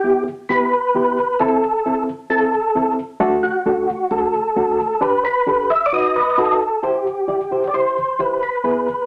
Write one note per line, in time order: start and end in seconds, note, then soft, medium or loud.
0.00 0.27 B3 medium
0.00 0.24 G4 loud
0.04 0.27 E4 medium
0.04 0.27 G4 medium
0.49 0.72 B3 medium
0.49 0.72 E4 medium
0.49 0.73 G4 medium
0.49 1.42 B4 loud
0.95 1.17 B3 medium
0.95 1.18 E4 medium
0.95 1.18 G4 medium
1.40 1.63 C4 loud
1.40 1.63 E4 medium
1.40 2.03 A4 loud
1.40 1.63 A4 loud
1.85 2.08 C4 medium
1.85 2.08 E4 medium
1.85 2.08 A4 medium
2.30 2.53 C4 medium
2.30 2.53 E4 medium
2.30 2.94 A4 loud
2.30 2.53 A4 medium
2.75 2.98 C4 medium
2.75 2.98 E4 medium
2.75 2.98 A4 medium
3.20 3.43 A3 loud
3.20 3.43 D4 loud
3.20 3.43 F#4 loud
3.20 3.43 A4 loud
3.43 4.13 F#4 loud
3.66 3.89 A3 medium
3.66 3.89 D4 medium
3.66 3.89 F#4 medium
3.66 3.89 A4 medium
4.11 4.34 A3 medium
4.11 4.34 D4 medium
4.11 4.34 F#4 medium
4.11 5.04 A4 medium
4.11 4.34 A4 medium
4.56 4.79 A3 medium
4.56 4.79 D4 medium
4.56 4.79 F#4 medium
4.56 4.79 A4 medium
5.01 5.24 D4 loud
5.01 5.24 G4 medium
5.01 5.25 B4 loud
5.01 5.24 B4 loud
5.25 5.71 B4 loud
5.47 5.70 D4 medium
5.47 5.70 G4 medium
5.47 5.70 A4 medium
5.70 5.86 E5 loud
5.86 5.93 D5 medium
5.92 6.15 D#4 medium
5.92 6.15 F#4 medium
5.92 6.16 B4 medium
5.92 6.57 D#5 medium
6.16 6.39 B4 medium
6.38 6.61 D#4 medium
6.38 6.61 F#4 medium
6.38 6.85 A4 medium
6.38 6.61 B4 medium
6.83 7.06 E4 medium
6.83 7.06 G4 medium
6.83 7.70 G4 medium
6.83 7.06 C5 medium
7.28 7.40 E4 medium
7.28 7.40 G4 medium
7.28 7.40 D5 medium
7.51 7.63 E4 medium
7.51 7.63 G4 medium
7.51 7.63 C5 medium
7.67 7.74 D5 medium
7.74 7.97 E4 medium
7.74 7.97 G4 medium
7.74 8.21 C5 medium
7.74 7.97 C5 medium
8.19 8.42 E4 medium
8.19 8.43 G4 medium
8.19 8.42 B4 medium
8.19 8.43 C5 medium
8.43 9.06 B4 medium
8.64 8.87 B3 medium
8.64 8.88 E4 medium
8.64 8.88 G#4 medium
8.64 8.88 B4 medium